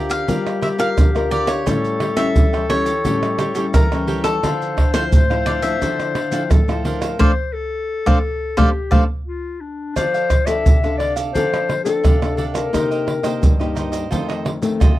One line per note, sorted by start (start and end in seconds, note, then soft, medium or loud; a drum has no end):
0.00 0.25 D3 medium
0.00 0.23 C4 medium
0.00 0.23 F4 medium
0.00 0.26 G4 medium
0.00 1.68 G4 loud
0.00 0.23 A#4 medium
0.00 0.26 A#4 medium
0.00 0.27 D5 medium
0.00 0.27 F5 medium
0.10 0.59 F5 medium
0.10 pandeiro medium
0.10 maracas medium
0.28 0.94 G3 medium
0.28 0.74 C4 medium
0.28 0.75 F4 medium
0.28 0.60 G4 medium
0.28 0.61 A#4 medium
0.28 0.75 A#4 medium
0.28 0.62 D5 medium
0.28 0.62 F5 medium
0.28 pandeiro medium
0.28 maracas medium
0.28 surdo medium
0.47 pandeiro soft
0.47 tamborim medium
0.47 maracas soft
0.61 0.77 G4 soft
0.61 0.77 A#4 soft
0.61 0.78 D5 medium
0.61 0.68 E5 medium
0.61 0.78 F5 medium
0.61 pandeiro medium
0.61 tamborim medium
0.78 1.08 C4 medium
0.78 1.09 F4 medium
0.78 0.88 G4 medium
0.78 0.88 A#4 medium
0.78 1.09 A#4 medium
0.78 0.89 D5 medium
0.78 0.89 F5 medium
0.78 1.31 F5 loud
0.78 pandeiro medium
0.78 maracas medium
0.98 1.63 D3 medium
0.98 pandeiro medium
0.98 tamborim medium
0.98 maracas medium
0.98 surdo medium
1.15 1.61 C4 medium
1.15 1.62 F4 medium
1.15 1.62 A#4 medium
1.15 1.30 A#4 soft
1.15 1.31 D5 soft
1.15 1.31 F5 soft
1.15 pandeiro soft
1.15 tamborim medium
1.15 maracas soft
1.31 1.47 G4 medium
1.31 1.48 A#4 medium
1.31 1.49 D5 medium
1.31 1.47 D5 medium
1.31 1.46 F5 medium
1.31 pandeiro medium
1.47 1.65 A#4 soft
1.47 2.13 C#5 medium
1.47 1.65 D5 soft
1.47 1.64 F5 soft
1.47 pandeiro medium
1.47 tamborim medium
1.47 maracas medium
1.66 2.32 A2 medium
1.66 2.13 G3 medium
1.66 2.13 C#4 medium
1.66 2.13 E4 medium
1.66 1.99 G4 medium
1.66 2.00 A4 medium
1.66 4.16 A4 loud
1.66 2.00 C#5 medium
1.66 2.00 G5 medium
1.66 pandeiro medium
1.66 tamborim medium
1.66 maracas medium
1.66 surdo medium
1.85 pandeiro soft
1.85 maracas soft
2.00 2.15 G4 soft
2.00 2.16 A4 soft
2.00 2.16 C#5 medium
2.00 2.16 G5 soft
2.00 pandeiro medium
2.00 tamborim medium
2.17 2.64 G3 medium
2.17 2.64 C#4 medium
2.17 2.65 E4 medium
2.17 2.27 G4 medium
2.17 2.27 A4 medium
2.17 2.27 C#5 medium
2.17 2.66 E5 medium
2.17 2.27 G5 medium
2.17 pandeiro medium
2.17 tamborim medium
2.17 maracas medium
2.36 3.02 E3 medium
2.36 pandeiro medium
2.36 maracas medium
2.36 surdo medium
2.53 2.69 A4 soft
2.53 2.70 C#5 soft
2.53 2.69 G5 medium
2.53 pandeiro soft
2.53 tamborim medium
2.53 maracas soft
2.69 2.90 G3 medium
2.69 2.91 C#4 medium
2.69 2.91 E4 medium
2.69 3.03 G4 medium
2.69 3.03 A4 medium
2.69 3.77 C#5 medium
2.69 3.04 C#5 medium
2.69 3.04 G5 medium
2.69 pandeiro medium
2.69 tamborim medium
2.86 pandeiro medium
2.86 maracas medium
3.05 3.71 A2 medium
3.05 3.52 G3 medium
3.05 3.52 C#4 medium
3.05 3.52 E4 medium
3.05 3.37 G4 medium
3.05 3.38 A4 medium
3.05 3.38 C#5 medium
3.05 3.39 G5 medium
3.05 pandeiro medium
3.05 maracas medium
3.05 surdo medium
3.23 pandeiro soft
3.23 tamborim medium
3.23 maracas soft
3.38 3.54 G4 soft
3.38 3.55 A4 soft
3.38 3.55 C#5 medium
3.38 3.55 G5 medium
3.38 pandeiro medium
3.38 tamborim medium
3.38 maracas medium
3.55 3.85 G3 medium
3.55 3.86 C#4 medium
3.55 3.86 E4 medium
3.55 3.65 G4 medium
3.55 3.65 A4 medium
3.55 3.66 C#5 medium
3.55 3.66 G5 medium
3.55 pandeiro medium
3.55 maracas medium
3.74 4.40 E3 medium
3.74 4.23 A#4 medium
3.74 pandeiro medium
3.74 tamborim medium
3.74 maracas medium
3.74 surdo medium
3.92 4.38 G3 medium
3.92 4.38 C#4 medium
3.92 4.39 E4 medium
3.92 4.07 A4 soft
3.92 4.07 C#5 soft
3.92 4.08 G5 soft
3.92 pandeiro soft
3.92 tamborim medium
3.92 maracas soft
4.07 4.24 G4 medium
4.07 4.24 A4 medium
4.07 4.24 C#5 medium
4.07 4.23 G5 medium
4.07 pandeiro medium
4.24 4.90 A4 medium
4.24 4.41 C#5 soft
4.24 4.41 G5 soft
4.24 pandeiro medium
4.24 tamborim medium
4.24 maracas medium
4.43 5.09 D3 medium
4.43 4.76 F3 medium
4.43 4.76 C4 medium
4.43 4.76 D4 medium
4.43 4.76 A4 medium
4.43 6.52 C5 loud
4.43 4.76 C5 medium
4.43 4.77 F5 medium
4.43 pandeiro medium
4.43 tamborim medium
4.43 maracas medium
4.43 surdo medium
4.62 pandeiro soft
4.62 maracas soft
4.77 4.92 D4 soft
4.77 4.93 A4 soft
4.77 4.93 C5 soft
4.77 4.93 F5 soft
4.77 pandeiro medium
4.77 tamborim medium
4.77 surdo medium
4.94 5.23 F3 medium
4.94 5.24 C4 medium
4.94 5.03 D4 medium
4.94 5.24 E4 medium
4.94 5.04 A4 medium
4.94 5.48 C5 medium
4.94 5.04 C5 medium
4.94 5.04 F5 medium
4.94 pandeiro medium
4.94 tamborim medium
4.94 maracas medium
5.12 5.78 A2 medium
5.12 pandeiro medium
5.12 maracas medium
5.12 surdo medium
5.30 5.59 F3 medium
5.30 5.59 C4 soft
5.30 5.59 E4 medium
5.30 5.46 A4 soft
5.30 5.46 C5 soft
5.30 5.46 F5 soft
5.30 pandeiro soft
5.30 tamborim medium
5.30 maracas soft
5.46 5.80 D4 medium
5.46 5.80 A4 medium
5.46 5.80 C5 medium
5.46 5.51 D5 medium
5.46 5.81 F5 medium
5.46 pandeiro medium
5.46 tamborim medium
5.62 5.75 F3 medium
5.62 5.75 C4 medium
5.62 5.76 E4 medium
5.62 7.15 E5 medium
5.62 pandeiro medium
5.62 maracas medium
5.81 6.47 D3 medium
5.81 6.14 F3 medium
5.81 6.14 C4 medium
5.81 6.14 D4 medium
5.81 6.14 E4 medium
5.81 6.15 A4 medium
5.81 6.15 C5 medium
5.81 pandeiro medium
5.81 maracas medium
5.81 surdo medium
6.00 pandeiro soft
6.00 tamborim medium
6.00 maracas soft
6.15 6.31 D4 soft
6.15 6.31 A4 soft
6.15 6.32 C5 soft
6.15 6.32 F5 medium
6.15 pandeiro medium
6.15 tamborim medium
6.31 6.62 F3 medium
6.31 6.62 C4 medium
6.31 6.42 D4 medium
6.31 6.62 E4 medium
6.31 6.42 A4 medium
6.31 6.42 C5 medium
6.31 6.42 F5 medium
6.31 pandeiro medium
6.31 maracas medium
6.50 7.16 A2 medium
6.50 6.84 A4 loud
6.50 pandeiro medium
6.50 tamborim medium
6.50 maracas medium
6.50 surdo loud
6.68 7.14 F3 medium
6.68 7.15 C4 medium
6.68 7.15 E4 medium
6.68 6.84 A4 soft
6.68 6.84 C5 soft
6.68 6.84 F5 soft
6.68 pandeiro soft
6.68 tamborim medium
6.68 maracas soft
6.85 7.01 D4 medium
6.85 7.01 A4 medium
6.85 7.17 A#4 medium
6.85 7.01 C5 medium
6.85 7.00 F5 medium
6.85 pandeiro medium
7.01 7.19 A4 soft
7.01 7.18 C5 soft
7.01 7.18 F5 soft
7.01 pandeiro medium
7.01 tamborim medium
7.01 maracas medium
7.19 7.31 A3 loud
7.19 7.31 C4 medium
7.19 7.31 D4 medium
7.19 7.31 A4 medium
7.19 7.31 C5 medium
7.19 7.54 C5 loud
7.19 7.31 C5 medium
7.19 7.31 D5 medium
7.19 7.31 F5 medium
7.19 surdo medium
7.53 8.59 A4 medium
8.06 8.18 A3 medium
8.06 8.18 C4 medium
8.06 8.18 D4 medium
8.06 8.18 A4 medium
8.06 8.18 C5 medium
8.06 8.18 D5 medium
8.06 8.18 F5 medium
8.06 surdo medium
8.57 8.69 A3 medium
8.57 8.69 C4 medium
8.57 8.69 D4 medium
8.57 9.00 G4 medium
8.57 8.70 A4 medium
8.57 8.69 C5 medium
8.57 8.70 C5 medium
8.57 8.69 D5 medium
8.57 8.70 D5 medium
8.57 8.69 F5 medium
8.57 surdo medium
8.91 9.03 A3 medium
8.91 9.03 C4 medium
8.91 9.03 D4 medium
8.91 9.04 A4 medium
8.91 9.03 C5 medium
8.91 9.04 C5 medium
8.91 9.03 D5 medium
8.91 9.04 D5 medium
8.91 9.03 F5 medium
8.91 surdo loud
9.27 9.62 F4 medium
9.60 9.96 D4 medium
9.96 10.62 F3 medium
9.96 10.12 D4 medium
9.96 10.13 A4 medium
9.96 10.47 C5 loud
9.96 10.13 D5 medium
9.96 10.13 F5 medium
9.96 pandeiro medium
9.96 tamborim medium
9.96 maracas medium
9.96 surdo medium
10.14 10.29 A4 soft
10.14 10.30 D5 soft
10.14 10.30 F5 soft
10.14 pandeiro soft
10.14 maracas soft
10.30 muted cavaquinho stroke soft
10.30 pandeiro medium
10.30 tamborim medium
10.30 maracas medium
10.30 surdo medium
10.46 10.77 C4 medium
10.46 10.77 D4 medium
10.46 10.77 A4 medium
10.46 10.82 A4 medium
10.46 10.81 D5 medium
10.46 10.97 E5 loud
10.46 pandeiro medium
10.46 tamborim medium
10.46 maracas medium
10.66 11.31 C3 medium
10.66 pandeiro medium
10.66 maracas medium
10.66 surdo loud
10.83 11.30 C4 medium
10.83 11.30 D4 medium
10.83 11.30 A4 medium
10.83 10.99 A4 soft
10.83 10.99 D5 soft
10.83 10.99 F5 soft
10.83 pandeiro soft
10.83 tamborim medium
10.83 maracas soft
10.98 11.16 D4 medium
10.98 11.16 A4 medium
10.98 11.14 D5 medium
10.98 11.16 D5 medium
10.98 11.15 F5 medium
10.98 pandeiro soft
10.98 tamborim medium
11.16 11.33 A4 soft
11.16 11.33 D5 medium
11.16 11.33 F5 medium
11.16 pandeiro medium
11.16 maracas medium
11.33 12.01 F3 medium
11.33 11.81 C4 medium
11.33 11.51 D4 medium
11.33 11.81 D4 medium
11.33 11.51 A4 medium
11.33 11.82 A4 medium
11.33 11.82 C5 medium
11.33 11.51 D5 medium
11.33 11.51 F5 medium
11.33 pandeiro medium
11.33 maracas medium
11.33 surdo medium
11.53 11.68 A4 soft
11.53 11.68 D5 soft
11.53 11.69 F5 soft
11.53 pandeiro soft
11.53 tamborim medium
11.53 maracas soft
11.69 muted cavaquinho stroke soft
11.69 pandeiro medium
11.69 tamborim medium
11.84 12.15 C4 medium
11.84 12.16 D4 medium
11.84 12.33 A4 medium
11.84 12.16 A4 medium
11.84 pandeiro medium
11.84 maracas medium
12.03 12.70 C3 medium
12.03 12.20 D4 medium
12.03 12.20 A4 medium
12.03 12.20 D5 medium
12.03 12.21 F5 medium
12.03 pandeiro medium
12.03 tamborim medium
12.03 maracas medium
12.03 surdo medium
12.22 12.68 C4 medium
12.22 12.68 D4 medium
12.22 12.68 A4 medium
12.22 12.37 A4 soft
12.22 12.37 D5 soft
12.22 12.37 F5 soft
12.22 pandeiro soft
12.22 tamborim medium
12.22 maracas soft
12.36 12.54 D4 medium
12.36 12.45 A4 medium
12.36 12.54 A4 medium
12.36 12.54 D5 medium
12.36 12.53 F5 medium
12.36 pandeiro medium
12.53 12.72 A4 soft
12.53 13.54 A#4 medium
12.53 12.71 D5 soft
12.53 12.71 F5 medium
12.53 pandeiro medium
12.53 tamborim medium
12.53 maracas medium
12.73 13.39 C3 medium
12.73 13.19 A#3 soft
12.73 12.89 D#4 medium
12.73 13.20 D#4 medium
12.73 13.20 G4 medium
12.73 12.89 A#4 medium
12.73 12.89 C5 medium
12.73 12.90 D#5 medium
12.73 pandeiro medium
12.73 tamborim medium
12.73 maracas medium
12.73 surdo medium
12.91 13.06 A#4 soft
12.91 13.06 C5 soft
12.91 13.07 D#5 soft
12.91 pandeiro soft
12.91 maracas soft
13.07 muted cavaquinho stroke soft
13.07 pandeiro medium
13.07 tamborim medium
13.23 13.53 A#3 medium
13.23 13.53 D#4 medium
13.23 13.53 G4 medium
13.23 13.58 A#4 medium
13.23 13.58 C5 medium
13.23 13.57 D#5 medium
13.23 pandeiro medium
13.23 tamborim medium
13.23 maracas medium
13.42 14.08 G2 medium
13.42 pandeiro medium
13.42 maracas medium
13.42 surdo medium
13.59 14.06 A#3 medium
13.59 14.06 D#4 medium
13.59 14.06 G4 medium
13.59 13.75 A#4 soft
13.59 13.75 C5 soft
13.59 13.75 D#5 medium
13.59 pandeiro soft
13.59 tamborim medium
13.59 maracas soft
13.75 13.92 D#4 medium
13.75 13.92 A#4 soft
13.75 13.92 C5 medium
13.75 13.91 D#5 medium
13.75 pandeiro medium
13.75 tamborim medium
13.75 maracas medium
13.92 14.10 A#4 medium
13.92 14.09 C5 medium
13.92 14.09 D#5 medium
13.92 pandeiro medium
13.92 maracas medium
14.11 14.77 F2 medium
14.11 14.58 D#3 medium
14.11 14.58 A3 medium
14.11 14.58 C4 medium
14.11 14.27 F4 medium
14.11 14.27 A4 medium
14.11 14.27 C5 medium
14.11 14.27 D#5 medium
14.11 pandeiro medium
14.11 maracas medium
14.11 surdo medium
14.28 14.44 A4 soft
14.28 14.44 C5 soft
14.28 14.44 D#5 soft
14.28 pandeiro soft
14.28 tamborim medium
14.28 maracas soft
14.45 muted cavaquinho stroke soft
14.45 pandeiro medium
14.45 tamborim medium
14.62 14.92 D#3 medium
14.62 14.92 A3 medium
14.62 14.92 C4 medium
14.62 pandeiro medium
14.62 maracas medium
14.80 14.99 C3 medium
14.80 14.96 F4 medium
14.80 14.97 A4 medium
14.80 14.97 C5 medium
14.80 14.97 D#5 medium
14.80 pandeiro medium
14.80 tamborim medium
14.80 maracas medium
14.80 surdo medium